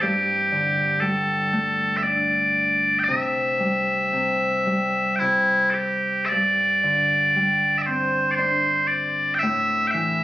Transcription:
Already playing: harp A3 C4 E4
0.02 harp G2, bagpipes G4
0.52 harp D3
1.00 harp G3, bagpipes A4
1.53 harp A3
1.97 bagpipes E5
2.03 harp D4, bagpipes D5
2.99 bagpipes G5
3.04 bagpipes E5
3.08 harp C3
3.60 harp G3
4.12 harp C3
4.66 harp G3
5.16 bagpipes E4 G5
5.21 harp C3
5.70 bagpipes G4 A4
6.26 bagpipes D5 E5
6.31 harp G2
6.83 harp D3
7.36 harp G3
7.78 bagpipes E5
7.82 bagpipes D5
7.86 harp C4, bagpipes C5
8.31 bagpipes C5 D5
8.38 harp D4
8.87 bagpipes D5
9.35 bagpipes G5
9.39 harp A2, bagpipes E5
9.87 bagpipes E5 G5
9.94 harp E3

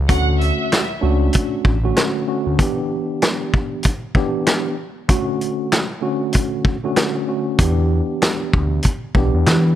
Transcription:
0.08 analog synth bass D2, tine electric piano D3 A3 C#4 F#4, violin section F#5, kick, closed hi-hat
0.40 violin section E5, closed hi-hat
0.72 snare, clap, closed hi-hat
1.01 analog synth bass C#2, tine electric piano A3 C#4 D4 F#4
1.33 kick, closed hi-hat
1.65 analog synth bass A1, kick
1.83 tine electric piano D3 A3 C#4 F#4
1.97 snare, clap, closed hi-hat
2.27 tine electric piano D3 A3 C#4 F#4
2.46 analog synth bass D2
2.58 tine electric piano E3 B3 D4 G4, kick, closed hi-hat
3.22 snare, clap, closed hi-hat
3.54 kick
3.83 kick, closed hi-hat
4.15 tine electric piano E3 B3 D4 G4, kick
4.47 snare, clap, closed hi-hat
5.08 tine electric piano D3 A3 C#4 F#4, kick, closed hi-hat
5.41 closed hi-hat
5.72 snare, clap, closed hi-hat
6.01 tine electric piano D3 A3 C#4 F#4
6.33 kick, closed hi-hat
6.65 kick
6.84 tine electric piano D3 A3 C#4 F#4
6.96 snare, clap, closed hi-hat
7.27 tine electric piano D3 A3 C#4 F#4
7.58 analog synth bass E2, tine electric piano E3 B3 D4 G4, kick, closed hi-hat
8.22 snare, clap, closed hi-hat
8.53 analog synth bass D2, kick
8.83 kick, closed hi-hat
9.15 analog synth bass B1, tine electric piano E3 B3 D4 G4, kick
9.34 analog synth bass E2
9.46 analog synth bass E3, snare, clap, closed hi-hat

